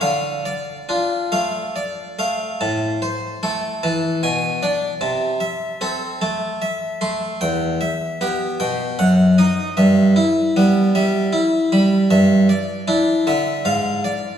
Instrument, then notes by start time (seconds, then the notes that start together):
harpsichord
0.01 D3 F5
0.45 D5
0.89 D4 F4
1.32 A3 F5
1.76 D5
2.19 A3 F5
2.61 A2 A5
3.02 C5
3.43 A3 A4
3.83 E3 A5
4.23 B2 G#5
4.63 D4 D5
5.01 C3 A5
5.40 E5
5.81 C4 A4
6.22 A3 A5
6.62 E5
7.01 A3 C6
7.41 E2 G5
7.81 E5
8.21 B3 G4
8.60 B2 G5
8.99 F#2 F#5
9.38 D#4 D#5
9.77 G2 E5
10.16 E4
10.56 G3 B3
10.95 G3 E5
11.33 E4
11.72 G3 B5
12.11 G2 E5
12.49 D5
12.88 D4 E4
13.27 D3 E5
13.65 G#2 F5
14.04 D5